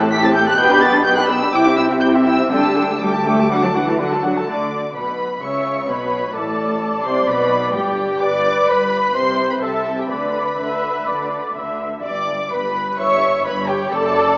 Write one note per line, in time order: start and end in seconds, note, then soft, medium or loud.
0.00 0.58 A1 medium
0.00 0.58 A2 loud
0.00 0.11 C4 medium
0.00 0.12 G4 medium
0.00 0.11 A4 medium
0.00 0.12 A5 medium
0.11 0.22 A3 medium
0.11 0.22 G4 medium
0.11 0.22 A4 medium
0.11 0.22 G5 medium
0.11 0.23 B6 loud
0.23 0.35 C4 medium
0.23 0.35 G4 medium
0.23 0.35 A4 medium
0.23 0.35 A5 medium
0.23 0.35 A6 loud
0.34 0.46 A3 medium
0.34 0.46 G4 medium
0.34 0.47 A4 medium
0.34 0.47 G5 medium
0.34 0.46 G6 loud
0.46 0.58 C4 medium
0.46 0.59 G4 medium
0.46 0.58 A4 medium
0.46 0.59 A5 medium
0.46 0.59 F#6 loud
0.58 1.53 B1 medium
0.58 1.53 B2 medium
0.58 0.69 B3 medium
0.58 0.69 G4 medium
0.58 0.70 B4 medium
0.58 0.70 G5 medium
0.58 0.82 G6 loud
0.69 0.82 D4 medium
0.69 0.83 G4 medium
0.69 0.82 B4 medium
0.69 0.83 B5 medium
0.81 0.94 B3 medium
0.81 0.94 G4 medium
0.81 0.95 B4 medium
0.81 0.95 G5 medium
0.81 1.05 A6 loud
0.94 1.06 D4 medium
0.94 1.07 G4 medium
0.94 1.06 B4 medium
0.94 1.06 B5 medium
1.04 1.17 B3 medium
1.04 1.17 G4 medium
1.04 1.17 B4 medium
1.04 1.17 G5 medium
1.04 1.17 G6 loud
1.17 1.29 D4 medium
1.17 1.30 G4 medium
1.17 1.29 B4 medium
1.17 1.30 B5 medium
1.17 1.29 F#6 loud
1.28 1.41 B3 medium
1.28 1.41 G4 medium
1.28 1.41 B4 medium
1.28 1.42 G5 medium
1.28 1.52 E6 loud
1.41 1.53 D4 medium
1.41 1.54 G4 medium
1.41 1.53 B4 medium
1.41 1.54 B5 medium
1.52 2.48 C2 medium
1.52 2.48 C3 medium
1.52 1.63 E4 medium
1.52 1.65 E4 medium
1.52 1.64 G4 medium
1.52 1.65 G5 medium
1.52 1.77 D6 loud
1.64 1.77 C4 medium
1.64 1.76 E4 medium
1.64 1.78 G4 medium
1.64 1.78 E5 medium
1.77 1.88 E4 medium
1.77 1.90 E4 medium
1.77 1.89 G4 medium
1.77 1.90 G5 medium
1.77 1.85 E6 loud
1.89 2.01 C4 medium
1.89 1.99 E4 medium
1.89 2.02 G4 medium
1.89 2.02 E5 medium
2.00 2.12 E4 medium
2.00 2.13 E4 medium
2.00 2.12 G4 medium
2.00 2.13 G5 medium
2.00 2.09 G6 loud
2.13 2.25 C4 medium
2.13 2.24 E4 medium
2.13 2.26 G4 medium
2.13 2.26 E5 medium
2.25 2.37 E4 medium
2.25 2.38 E4 medium
2.25 2.38 G4 medium
2.25 2.38 G5 medium
2.25 2.48 E6 loud
2.38 2.50 C4 medium
2.38 2.51 E4 medium
2.38 2.51 G4 medium
2.38 2.51 E5 medium
2.50 4.28 D2 medium
2.50 2.96 D3 medium
2.50 2.61 G3 medium
2.50 2.62 D4 medium
2.50 2.63 A4 medium
2.50 2.63 G5 medium
2.50 2.99 E6 loud
2.62 2.73 G3 medium
2.62 2.75 A3 medium
2.62 2.76 G4 medium
2.62 2.76 A5 medium
2.75 2.86 G3 medium
2.75 2.87 D4 medium
2.75 2.89 A4 medium
2.75 2.88 G5 medium
2.87 3.00 G3 medium
2.87 3.00 A3 medium
2.87 3.01 G4 medium
2.87 3.01 A5 medium
3.00 3.08 G3 medium
3.00 3.11 G3 medium
3.00 3.12 D4 medium
3.00 3.13 A4 medium
3.00 3.13 G5 medium
3.00 4.25 D6 medium
3.13 3.24 G3 medium
3.13 3.25 A3 medium
3.13 3.26 G4 medium
3.13 3.26 A5 medium
3.25 3.36 G3 medium
3.25 3.50 A3 loud
3.25 3.38 D4 medium
3.25 3.39 A4 medium
3.25 3.39 G5 medium
3.37 3.50 G3 medium
3.37 3.50 A3 medium
3.37 3.51 G4 medium
3.37 3.51 A5 medium
3.50 3.62 F#3 medium
3.50 3.56 G3 loud
3.50 3.62 D4 medium
3.50 3.63 F#4 medium
3.50 3.62 F#5 medium
3.63 3.68 F#3 medium
3.63 3.75 A3 medium
3.63 3.75 F#4 medium
3.63 3.76 A4 medium
3.63 3.75 A5 medium
3.75 3.99 E3 medium
3.75 3.87 F#3 medium
3.75 3.87 D4 medium
3.75 3.88 F#4 medium
3.75 3.88 F#5 medium
3.87 4.00 A3 medium
3.87 4.00 F#4 medium
3.87 4.00 A4 medium
3.87 4.00 A5 medium
3.99 4.25 D3 medium
3.99 4.11 F#3 medium
3.99 4.11 D4 medium
3.99 4.11 F#4 medium
3.99 4.12 F#5 medium
4.12 4.24 A3 medium
4.12 4.24 F#4 medium
4.12 4.25 A4 medium
4.12 4.25 A5 medium
4.24 4.37 F#3 medium
4.24 4.49 F#3 medium
4.24 4.37 D4 medium
4.24 4.37 F#4 medium
4.24 4.37 F#5 medium
4.36 4.49 A3 medium
4.36 4.49 F#4 medium
4.36 4.49 A4 medium
4.36 4.49 A5 medium
4.48 4.92 D2 medium
4.48 4.93 D3 medium
4.48 4.93 D5 medium
4.48 4.93 D6 medium
4.95 5.42 B1 medium
4.95 5.42 B2 medium
4.95 5.43 B4 medium
4.95 5.42 B5 medium
5.42 5.89 C#2 medium
5.42 5.89 C#3 medium
5.42 5.89 C#5 medium
5.42 5.86 E5 medium
5.42 5.89 C#6 medium
5.89 6.36 B1 medium
5.89 6.36 B2 medium
5.89 6.36 B4 medium
5.89 6.35 C#5 medium
5.89 6.36 B5 medium
6.35 7.04 A1 medium
6.35 7.04 A2 medium
6.35 7.06 A4 medium
6.35 8.18 D5 medium
6.35 7.04 A5 medium
7.04 7.28 C2 medium
7.04 7.28 C3 medium
7.04 7.29 C5 medium
7.04 7.28 C6 medium
7.28 7.74 B1 medium
7.28 7.74 B2 medium
7.28 7.75 B4 medium
7.28 7.74 B5 loud
7.73 8.20 G1 medium
7.73 8.20 G2 medium
7.73 8.21 G4 medium
7.73 8.20 G5 medium
8.20 8.63 G1 medium
8.20 8.63 G2 medium
8.20 9.13 B4 medium
8.20 8.69 D5 medium
8.20 8.67 D6 loud
8.67 9.09 G1 medium
8.67 9.09 G2 medium
8.67 9.16 B4 medium
8.67 9.14 B5 loud
9.15 9.57 C2 medium
9.15 9.57 C3 medium
9.15 9.62 C5 medium
9.15 9.50 C5 medium
9.15 9.50 C6 loud
9.50 9.62 B4 medium
9.50 9.55 B5 medium
9.61 10.04 C2 medium
9.61 10.05 C3 medium
9.61 9.98 A4 medium
9.61 10.10 E5 medium
9.61 9.97 A5 medium
9.99 10.11 G4 medium
9.99 10.11 G5 medium
10.09 10.54 D2 medium
10.09 10.54 D3 medium
10.09 11.81 B4 medium
10.09 10.53 D5 medium
10.09 11.77 B5 medium
10.59 11.02 D2 medium
10.59 11.02 D3 medium
10.59 11.04 E5 medium
11.07 11.50 D2 medium
11.07 11.51 D3 medium
11.07 11.56 D5 medium
11.56 11.99 D2 medium
11.56 11.99 D3 medium
11.56 12.04 E5 medium
12.03 12.46 G1 medium
12.03 12.47 G2 medium
12.03 12.48 D5 medium
12.03 12.48 D6 medium
12.51 12.93 G1 medium
12.51 12.94 G2 medium
12.51 12.98 B4 medium
12.51 12.99 B5 medium
12.98 13.40 G1 medium
12.98 13.41 G2 medium
12.98 13.46 C#5 medium
12.98 13.43 E5 medium
12.98 13.45 C#6 loud
13.45 13.87 G1 medium
13.45 13.87 G2 medium
13.45 13.54 B4 medium
13.45 13.92 C#5 medium
13.45 13.68 B5 loud
13.68 13.92 G4 medium
13.68 13.92 G5 medium
13.91 14.33 F#1 medium
13.91 14.33 F#2 medium
13.91 14.38 A4 loud
13.91 14.38 D5 medium
13.91 14.38 A5 loud